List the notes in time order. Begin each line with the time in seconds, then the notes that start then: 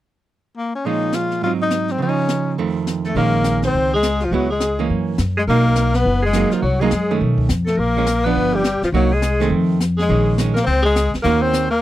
0.57 A#3
0.75 C#4
0.84 A#2 F3 G#3 C#4 D#4, brush sweep
1.13 F4, snare, hi-hat pedal
1.31 snare
1.42 G#2 F#3 C4 F4, brush sweep
1.46 D#4
1.62 D#4
1.70 snare, hi-hat pedal
1.88 C4, snare
1.98 C#3 F3, brush sweep
2.03 C#4
2.09 D#4
2.29 snare, hi-hat pedal
2.58 F2 D#3 A3 C4, brush sweep
2.87 snare, hi-hat pedal
3.05 A3 A4, snare
3.15 A#1 D#3 G#3 A#3 C#4 A#4, brush sweep
3.44 snare, hi-hat pedal
3.62 C5, snare
3.67 C4
3.74 C#2, brush sweep
3.94 G#3 G#4
4.03 snare, hi-hat pedal
4.20 F4, snare
4.25 F3
4.31 C#2 F#3 G#3 B3 E4 F#4, brush sweep
4.50 G#3 G#4
4.60 snare, hi-hat pedal
4.79 E3 A#3 C#4
4.89 F#2, brush sweep
5.18 F#2, snare, hi-hat pedal
5.37 G#3 G#4
5.47 B1 F#3 A#3 D#4 A#4, brush sweep
5.76 snare, hi-hat pedal
5.94 B3 B4, snare
6.04 F#1, brush sweep
6.22 G#3 G#4
6.33 F#3 A#3 D#4, snare, hi-hat pedal
6.51 F3 F4, muted upright bass stroke, snare
6.62 C2 F#3 F#4, brush sweep
6.80 F#3 G#3 A#3 D#4 G#4
6.91 F#2, snare, hi-hat pedal
7.11 D#3 A3 C#4
7.20 B1, brush sweep
7.38 kick
7.49 F2, snare, hi-hat pedal
7.66 A3 A4, snare
7.77 A#1 A#3 A#4, brush sweep
7.97 F3 G#3 C#4
8.06 snare, hi-hat pedal
8.24 F3 B3 D4 B4
8.35 G1, brush sweep
8.53 G3 G4
8.64 snare, hi-hat pedal
8.82 F3 F4, muted upright bass stroke, snare
8.92 C2 F#3 A#3 D#4 F#4, brush sweep
9.12 G#3 G#4
9.22 snare, hi-hat pedal
9.40 D#3 A3 C4, snare
9.50 F2, brush sweep
9.80 snare, hi-hat pedal
9.97 G#4, snare
10.02 G#3
10.09 A#1 D#3 G#3 C#4, brush sweep
10.38 D#3 G#3 C#4, snare, hi-hat pedal
10.54 A#3 A#4, snare
10.64 C#2 C4 C5, brush sweep
10.82 G#3 G#4
10.96 snare, hi-hat pedal
11.14 muted upright bass stroke, snare
11.22 D#2 D#3 A#3 C#4 A#4, brush sweep
11.26 F#4
11.41 C4 C5
11.53 snare, hi-hat pedal
11.70 A#3 A#4